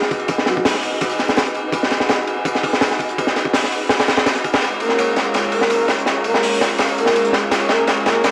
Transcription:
Already playing: analog synth pad D#4 F#4 G#4 B4
0.02 snare
0.11 kick, ride, tambourine
0.20 closed hi-hat
0.28 kick, ride, tambourine
0.38 snare
0.46 soft synth lead F#4, snare, ride, tambourine
0.56 soft synth lead F#4, kick
0.65 snare, open hi-hat, tambourine
0.74 snare
0.83 ride, tambourine
1.01 kick, snare, ride, tambourine
1.10 snare, tambourine
1.19 snare, ride, tambourine
1.28 snare, tambourine
1.36 snare, tambourine
1.37 snare, ride
1.46 closed hi-hat
1.54 ride, tambourine
1.73 kick, ride, tambourine
1.83 snare
1.91 snare, ride, tambourine
2.00 snare
2.09 snare, ride, tambourine
2.18 snare
2.27 ride, tambourine
2.45 kick, ride, tambourine
2.55 snare
2.63 kick, open hi-hat, ride
2.73 snare
2.81 snare, ride, tambourine
2.91 snare
2.99 kick, ride, tambourine
3.09 closed hi-hat
3.18 kick, ride, tambourine
3.27 snare
3.36 snare, ride, tambourine
3.45 kick
3.53 snare, open hi-hat, tambourine
3.64 snare
3.72 ride, tambourine
3.89 snare, ride, tambourine
3.99 snare, ride, tambourine
4.07 snare, ride, tambourine
4.17 snare, ride
4.26 snare, ride, tambourine
4.35 snare, closed hi-hat
4.44 kick, ride, tambourine
4.53 snare, ride
4.62 analog synth pad G#3 C#4 F4 A#4 C#5, snare, ride, tambourine
4.80 soft synth lead A#4, ride, tambourine
4.89 snare
4.99 snare, ride, tambourine
5.16 snare, ride, tambourine
5.34 snare, ride, tambourine
5.44 snare
5.52 soft synth lead A#4, open hi-hat, ride
5.61 snare
5.70 snare, ride, tambourine
5.88 snare, ride, tambourine
5.99 closed hi-hat
6.06 snare, ride, tambourine
6.24 soft synth lead A#4, snare, ride, tambourine
6.34 snare
6.43 snare, open hi-hat, tambourine
6.61 snare, ride, tambourine
6.78 snare, ride, tambourine
6.89 snare, tambourine
6.98 soft synth lead A#4, snare, ride, tambourine
7.06 snare, tambourine
7.16 snare, ride, tambourine
7.25 closed hi-hat
7.33 snare, ride, tambourine
7.51 analog synth pad G#4, snare, ride, tambourine
7.69 soft synth lead A#4, snare, ride, tambourine
7.87 snare, ride, tambourine
7.97 snare
8.06 soft synth lead A#4, snare, ride, tambourine
8.24 snare, ride, tambourine

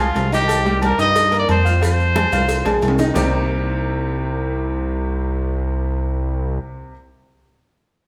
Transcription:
Already playing: analog synth bass C2
0.00 upright piano G#3 G#4 G#5, trumpet F4, high conga
0.15 analog synth bass C2, cowbell, high conga, low agogo, maracas
0.32 upright piano D#3 D#4 D#5, trumpet G4, cowbell, high conga, maracas
0.48 cowbell, high conga, low agogo, maracas
0.65 upright piano G3 G4 G5, high conga, maracas
0.82 trumpet A#4, cowbell, high conga, low agogo, maracas
0.98 analog synth bass G2, upright piano D#4 D#5 D#6, trumpet D#5, cowbell, maracas
1.15 cowbell, high conga, low agogo, maracas
1.31 upright piano A#3 A#4 A#5, cowbell, high conga, maracas
1.39 trumpet D5
1.49 analog synth bass F2, trumpet C5, cowbell, high conga, low agogo, maracas
1.65 upright piano F4 F5 F6, high conga, maracas
1.81 upright piano F3 F4 F5, trumpet C5, cowbell, high conga, low agogo, maracas
2.00 high conga, maracas
2.15 upright piano G#3 G#4 G#5, cowbell, high bongo, high conga, low agogo, maracas
2.32 analog synth bass C2, upright piano F4 F5 F6, cowbell, high conga, low agogo, maracas
2.49 cowbell, high conga, maracas
2.65 analog synth bass A#1, upright piano G#3 G#4 G#5, cowbell, low bongo, high conga, high timbale, low agogo, maracas
2.82 analog synth bass C2, cowbell, high conga, low agogo, maracas
2.88 low timbale
2.98 upright piano D#3 D#4 D#5, cowbell, low bongo, low timbale, maracas
3.14 analog synth bass C2, upright piano C3 G3 A#3 C4 D#4 G4, low bongo, low conga, low timbale, maracas

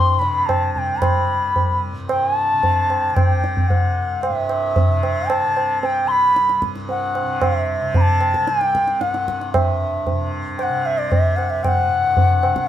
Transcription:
Already playing: tanpura C2 G2 C3, bansuri C6
0.17 tanpura C3, bansuri B5
0.21 tabla te
0.46 bansuri A5, tabla na, tabla ge
0.74 tanpura C3, bansuri A5, tabla ge
0.78 bansuri G5
0.99 bansuri B5, tabla na, tabla ge
1.34 tanpura C2
1.56 tabla tin, tabla ge
1.92 tanpura G2
2.09 bansuri G5, tabla na
2.25 bansuri G#5
2.37 bansuri A5
2.53 tanpura C3
2.63 tabla tin, tabla ge
2.90 tabla na
3.10 tanpura C3, bansuri A5
3.15 bansuri G5, tabla na, tabla ge
3.44 tabla te
3.57 tabla ge
3.68 tanpura C2, bansuri F#5, tabla tin, tabla ge
4.22 bansuri E5, tabla na
4.29 tanpura G2
4.49 tabla na
4.76 tabla tin, tabla ge
4.87 tanpura C3
5.03 tabla na
5.29 bansuri A5, tabla na
5.47 tanpura C3
5.57 tabla na
5.82 bansuri G5 A5, tabla tin
6.05 tanpura C2, bansuri C6
6.11 bansuri B5
6.36 tabla te
6.49 tabla te
6.62 tanpura G2, tabla ke
6.76 tabla te
6.89 bansuri F#5, tabla tin
7.15 tabla na
7.23 tanpura C3
7.42 bansuri E5, tabla na, tabla ge
7.81 tanpura C3
7.94 bansuri B5, tabla tin, tabla ge
8.01 bansuri A5
8.21 tabla na
8.34 tabla ke
8.40 tanpura C2
8.47 bansuri G5, tabla te
8.61 tabla te
8.75 tabla ke
8.88 tabla te
8.99 tanpura G2, bansuri F#5, tabla te
9.14 tabla te
9.28 tabla ke
9.41 tabla te
9.53 tanpura G2, bansuri E5, tabla na, tabla ge
10.07 tabla tin, tabla ge
10.12 tanpura C3
10.58 bansuri G5, tabla na
10.63 bansuri F#5
10.70 tanpura C3
10.86 bansuri E5
10.98 bansuri D5
11.11 bansuri E5, tabla tin, tabla ge
11.28 tanpura C2
11.36 bansuri F#5, tabla na
11.50 bansuri E5
11.64 bansuri F#5 G5, tabla na, tabla ge
11.88 tanpura G2
12.17 tabla tin, tabla ge
12.43 tanpura C3, tabla na
12.56 tabla ke

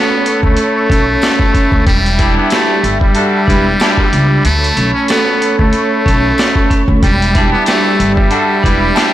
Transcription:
Already playing: vibraphone A3 C#4 A4, muted trumpet B3, analog synth pad A4 C#5 B5
0.26 vibraphone A3, closed hi-hat
0.43 upright bass D2, muted trumpet A3, kick
0.57 closed hi-hat
0.90 upright bass B1, vibraphone C#4, kick, closed hi-hat
1.22 snare, closed hi-hat, tambourine
1.39 kick
1.54 vibraphone C#4, kick, closed hi-hat
1.72 upright bass D2, kick
1.86 upright bass E1, analog synth pad G3 E5 B5, vibraphone G3, muted trumpet G3, kick, closed hi-hat
2.06 closed hi-hat
2.18 horn section D4 E4 G4, vibraphone D4, kick, closed hi-hat
2.37 muted trumpet B3
2.50 muted trumpet A3, vibraphone G4, snare, closed hi-hat, tambourine
2.83 upright bass G1, vibraphone G3, closed hi-hat
3.01 muted trumpet G3, kick
3.15 horn section D4 F#4 A4, closed hi-hat
3.47 upright bass E1, vibraphone D4, horn section E4 G4 B4, kick, closed hi-hat
3.80 horn section D4 E4 G4, snare, closed hi-hat, tambourine
3.98 kick
4.12 upright bass C#2, vibraphone D4, closed hi-hat
4.45 upright bass D2, vibraphone A3, muted trumpet A3, analog synth pad A4 C#5, closed hi-hat
4.64 closed hi-hat
4.77 upright bass B1, vibraphone C#4, closed hi-hat
4.93 muted trumpet C#4
5.08 muted trumpet B3, vibraphone A4, snare, closed hi-hat, tambourine
5.42 vibraphone A3, closed hi-hat
5.59 upright bass D2, muted trumpet A3, kick
5.73 closed hi-hat
6.06 upright bass B1, vibraphone C#4, kick, closed hi-hat
6.38 snare, closed hi-hat, tambourine
6.56 kick
6.70 vibraphone C#4, kick, closed hi-hat
6.88 upright bass D2, kick
7.03 upright bass E1, vibraphone G3, muted trumpet G3, analog synth pad G3 E5, kick, closed hi-hat
7.22 closed hi-hat
7.34 horn section D4 E4 G4, vibraphone D4, kick, closed hi-hat
7.52 muted trumpet B3
7.66 muted trumpet A3, vibraphone G4, snare, closed hi-hat, tambourine
7.99 upright bass G1, vibraphone G3, closed hi-hat
8.15 muted trumpet G3, kick
8.31 horn section D4 F#4 A4, closed hi-hat
8.63 upright bass E1, vibraphone D4, horn section E4 G4 B4, kick, closed hi-hat
8.96 horn section D4 E4 G4, snare, closed hi-hat, tambourine

